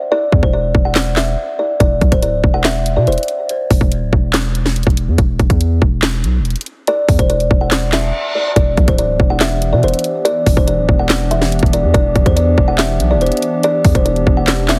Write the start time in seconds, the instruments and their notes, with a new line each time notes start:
0.12 kalimba D5
0.32 808-style bass E2, kick
0.43 808-style bass E1, kalimba C5, kick
0.53 kalimba D5
0.75 808-style bass E1, kick
0.85 kalimba F#5
0.95 snare, clap
1.16 kalimba E5, snare, clap
1.59 kalimba D5
1.80 808-style bass E1, kalimba D5, kick, closed hi-hat
2.01 808-style bass B1, kick, closed hi-hat
2.12 808-style bass D1, kalimba C5, kick, closed hi-hat
2.22 kalimba D5, closed hi-hat
2.44 808-style bass E1, kick
2.54 kalimba F#5
2.64 kalimba E5, snare, clap, closed hi-hat
2.86 closed hi-hat
2.96 808-style bass B2, kalimba D5
3.07 808-style bass E1, kalimba C5, closed hi-hat
3.12 closed hi-hat
3.18 closed hi-hat
3.23 closed hi-hat
3.28 closed hi-hat
3.49 closed hi-hat
3.70 808-style bass E1, kick, open hi-hat
3.81 808-style bass E1, kick
3.92 closed hi-hat
4.02 808-style bass D1
4.13 808-style bass E1, kick
4.33 snare, clap, closed hi-hat
4.55 closed hi-hat
4.66 snare
4.76 closed hi-hat
4.83 808-style bass E1, kick, closed hi-hat
4.90 closed hi-hat
4.97 closed hi-hat
5.08 808-style bass E2
5.18 808-style bass E1, kick, closed hi-hat
5.39 808-style bass E1, kick, closed hi-hat
5.50 808-style bass E2, kick, closed hi-hat
5.61 closed hi-hat
5.82 808-style bass E1, kick
6.02 snare, clap, closed hi-hat
6.24 808-style bass B1, closed hi-hat
6.40 808-style bass E1
6.45 closed hi-hat
6.50 closed hi-hat
6.56 closed hi-hat
6.61 closed hi-hat
6.66 closed hi-hat
6.87 kalimba D5, closed hi-hat
7.08 808-style bass E2, kick, closed hi-hat, open hi-hat
7.19 808-style bass E1, kalimba C5, kick, closed hi-hat
7.30 kalimba D5, closed hi-hat
7.40 closed hi-hat
7.51 808-style bass E1, kick
7.61 kalimba F#5
7.71 snare, clap, closed hi-hat, reverse cymbal
7.92 kalimba E5, snare, clap, closed hi-hat
8.35 kalimba D5
8.56 808-style bass E1, analog synth pad E3 B3 D4 G4, kalimba D5, kick, closed hi-hat
8.77 808-style bass B1, kick, closed hi-hat
8.88 808-style bass D1, kalimba C5, kick, closed hi-hat
8.98 kalimba D5, closed hi-hat
9.20 808-style bass E1, kick
9.30 kalimba F#5
9.40 kalimba E5, snare, clap, closed hi-hat
9.62 closed hi-hat
9.73 808-style bass B2, kalimba D5
9.83 808-style bass E1, kalimba C5, closed hi-hat
9.88 closed hi-hat
9.94 closed hi-hat
9.99 closed hi-hat
10.04 closed hi-hat
10.25 kalimba D5, closed hi-hat
10.46 808-style bass E1, kick, open hi-hat
10.57 808-style bass E1, kalimba C5, kick
10.67 kalimba D5, closed hi-hat
10.78 808-style bass D1
10.89 808-style bass E1, kick
10.99 kalimba F#5
11.09 snare, clap, closed hi-hat
11.31 kalimba E5, closed hi-hat
11.42 snare
11.52 closed hi-hat
11.59 808-style bass E1, kick, closed hi-hat
11.66 closed hi-hat
11.73 kalimba D5, closed hi-hat
11.84 808-style bass E2
11.94 808-style bass E1, kalimba D5, kick, closed hi-hat
12.16 808-style bass E1, kick, closed hi-hat
12.26 808-style bass E2, kalimba C5, kick, closed hi-hat
12.36 kalimba D5, closed hi-hat
12.58 808-style bass E1, kick
12.68 kalimba F#5
12.78 kalimba E5, snare, clap, closed hi-hat
13.00 808-style bass B1, closed hi-hat
13.11 kalimba D5
13.16 808-style bass E1
13.21 kalimba C5, closed hi-hat
13.26 closed hi-hat
13.32 closed hi-hat
13.37 closed hi-hat
13.42 closed hi-hat
13.63 kalimba D5, closed hi-hat
13.85 808-style bass E2, kick, closed hi-hat, open hi-hat
13.95 808-style bass E1, kalimba C5, kick, closed hi-hat
14.05 kalimba D5, closed hi-hat
14.16 closed hi-hat
14.27 808-style bass E1, kick
14.37 kalimba F#5
14.47 snare, clap, closed hi-hat
14.68 kalimba E5, snare, clap, closed hi-hat